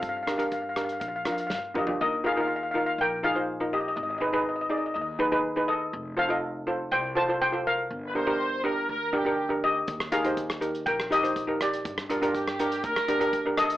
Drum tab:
HH |x-xxx-xxx-xx----|----------------|----------------|----------------|
SD |--r---r---r-o---|----------------|----------------|----------------|
T2 |--------------o-|----------------|----------------|----------------|
FT |---------------o|----------------|----------------|----------------|
BD |o---o---o---o---|----------------|----------------|----------------|

HH |----------------|x-xxx-xxx-xxx-xx|x-xxx-xxx-xxx-xx|
SD |----------------|-r---r---r----r-|-r---r---r----r-|
T2 |----------------|----------------|----------------|
FT |----------------|----------------|----------------|
BD |----------------|o---o---o---o---|o---o---o---o---|